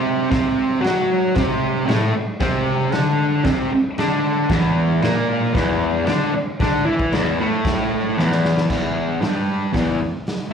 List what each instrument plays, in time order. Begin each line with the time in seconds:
Already playing: distorted electric guitar C3 C4
0.30 distorted electric guitar C3 C4, kick, snare, crash
0.81 distorted electric guitar F#3 F#4, crash
0.86 snare
1.35 distorted electric guitar C3 C4, kick, snare, crash
1.86 distorted electric guitar A2 A3, snare, crash
2.14 muted distorted electric guitar stroke
2.40 distorted electric guitar C3 C4, kick, snare, crash
2.92 distorted electric guitar D3 D4, snare, crash
3.44 distorted electric guitar C3 C4, kick, snare, crash
3.72 muted distorted electric guitar stroke
3.98 distorted electric guitar D3 D4, snare, crash
4.49 distorted electric guitar E2 E3, kick, snare, crash
5.01 distorted electric guitar A#2 A#3, snare, crash
5.53 distorted electric guitar E2 E3, kick, snare, crash
6.05 distorted electric guitar D3 D4, snare, crash
6.34 muted distorted electric guitar stroke
6.60 distorted electric guitar D3 D4, kick, snare, crash
6.85 distorted electric guitar E3 E4
6.99 kick
7.12 distorted electric guitar E2 E3, snare, crash
7.40 distorted electric guitar A2 A3
7.65 kick, snare, crash
8.18 distorted electric guitar E2 E3, snare
8.32 snare
8.45 snare
8.57 snare
8.70 distorted electric guitar E2 E3, kick, snare, crash
9.21 distorted electric guitar G2 G3, snare, open hi-hat
9.73 distorted electric guitar E2 E3, kick, snare, open hi-hat
10.27 snare, open hi-hat